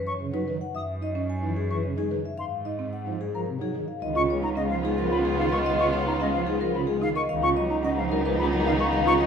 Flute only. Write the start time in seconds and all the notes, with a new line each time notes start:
0.07 C#6
0.75 D#6
1.70 C#6
2.39 C6
3.34 A#5
4.16 C#6
4.43 A#5
4.56 D#5
4.70 F5
5.11 B5
5.38 F5
5.52 C#6
5.79 C#6
6.07 A#5
6.20 D#5
6.34 F5
6.75 B5
7.02 F5
7.15 C#6
7.43 C#6
7.70 A#5
7.84 D#5
7.97 F5
8.38 B5
8.66 F5
8.80 C#6
9.07 C#6